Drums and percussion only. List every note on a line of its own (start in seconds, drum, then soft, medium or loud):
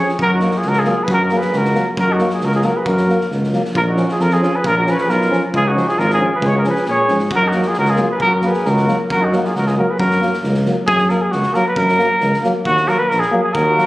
0.09 snare soft
0.19 kick medium
0.40 snare soft
0.51 snare soft
0.62 snare soft
0.73 snare soft
0.84 snare soft
1.08 kick loud
1.29 snare soft
1.41 snare soft
1.53 snare soft
1.65 snare soft
1.75 snare soft
1.97 kick loud
2.19 snare soft
2.30 snare soft
2.41 snare soft
2.52 snare soft
2.62 snare soft
2.86 kick medium
2.97 snare soft
3.10 snare soft
3.21 snare soft
3.31 snare soft
3.44 snare soft
3.53 snare soft
3.65 snare soft
3.75 kick medium
3.97 snare soft
4.09 snare soft
4.20 snare soft
4.31 snare soft
4.43 snare soft
4.64 kick medium
4.87 snare soft
4.98 snare soft
5.09 snare soft
5.21 snare soft
5.33 snare soft
5.54 kick medium
5.77 snare soft
5.88 snare soft
5.99 snare soft
6.10 snare soft
6.42 kick medium
6.64 snare soft
6.75 snare soft
6.86 snare soft
7.08 snare soft
7.19 snare soft
7.31 kick loud
7.52 snare soft
7.62 snare soft
7.73 snare soft
7.85 snare soft
7.96 snare soft
8.20 kick medium
8.41 snare soft
8.54 snare soft
8.65 snare soft
8.77 snare soft
8.88 snare soft
9.10 kick loud
9.32 snare soft
9.45 snare soft
9.55 snare soft
9.67 snare soft
9.99 kick medium
10.11 snare soft
10.22 snare soft
10.33 snare soft
10.44 snare soft
10.54 snare soft
10.66 snare soft
10.88 kick loud
10.98 snare soft
11.09 snare soft
11.32 snare soft
11.43 snare soft
11.54 snare soft
11.76 kick medium
11.88 snare soft
11.99 snare soft
12.20 snare soft
12.34 snare soft
12.44 snare soft
12.65 kick medium
12.77 snare soft
12.88 snare soft
13.11 snare soft
13.22 snare soft
13.55 kick loud
13.78 snare soft